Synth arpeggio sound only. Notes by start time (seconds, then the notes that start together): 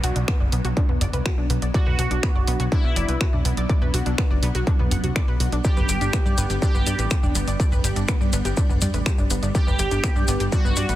0.04 F#4 F#5
0.16 D4 D5
0.28 B3 B4
0.40 D5 D6
0.52 B3 B4
0.65 F#4 F#5
0.77 D4 D5
0.89 B3 B4
1.01 D5 D6
1.13 B4 B5
1.26 F#4 F#5
1.38 D4 D5
1.50 B3 B4
1.62 D5 D6
1.74 D5 D6
1.87 B4 B5
1.99 F#4 F#5
2.11 D4 D5
2.23 B3 B4
2.35 D5 D6
2.48 B3 B4
2.60 F#4 F#5
2.72 D4 D5
2.84 B3 B4
2.96 D5 D6
3.09 B4 B5
3.21 F#4 F#5
3.33 D4 D5
3.45 B3 B4
3.57 D5 D6
3.70 D5 D6
3.82 B4 B5
3.94 F#4 F#5
4.06 D4 D5
4.18 B3 B4
4.31 D5 D6
4.43 B3 B4
4.55 F#4 F#5
4.67 D4 D5
4.79 B3 B4
4.91 F#5 F#6
5.04 F#4 F#5
5.16 D5 D6
5.28 B4 B5
5.40 F#4 F#5
5.52 D4 D5
5.65 D5 D6
5.77 B4 B5
5.89 G4 G5
6.01 D4 D5
6.13 B3 B4
6.26 D5 D6
6.38 B3 B4
6.50 G4 G5
6.62 D4 D5
6.74 B3 B4
6.87 D5 D6
6.99 B4 B5
7.11 G4 G5
7.23 D4 D5
7.35 B3 B4
7.48 D5 D6
7.60 D5 D6
7.72 B4 B5
7.84 G4 G5
7.96 D4 D5
8.09 B3 B4
8.21 D5 D6
8.33 B3 B4
8.45 G4 G5
8.57 D4 D5
8.69 B3 B4
8.82 D5 D6
8.94 B4 B5
9.06 G4 G5
9.18 D4 D5
9.30 B3 B4
9.43 D5 D6
9.55 D5 D6
9.67 B4 B5
9.79 G4 G5
9.91 D4 D5
10.04 B3 B4
10.16 D5 D6
10.28 B3 B4
10.40 G4 G5
10.52 D4 D5
10.65 B3 B4
10.77 D5 D6
10.89 B4 B5